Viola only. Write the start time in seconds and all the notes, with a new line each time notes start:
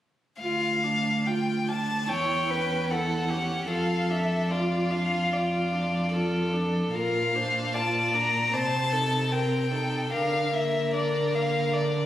0.42 F4
0.83 D4
1.26 F4
1.68 D4
2.09 E4
2.51 C#4
2.91 E4
3.30 C#4
3.70 F4
4.10 D4
4.50 F4
4.90 D4
5.32 F4
5.73 D4
6.14 F4
6.53 D4
6.94 F4
7.35 D4
7.73 F4
8.14 D4
8.52 C4
8.92 D#4
9.31 C4
9.71 D#4
10.12 D4
10.52 A#3
10.94 D4
11.35 A#3
11.75 D4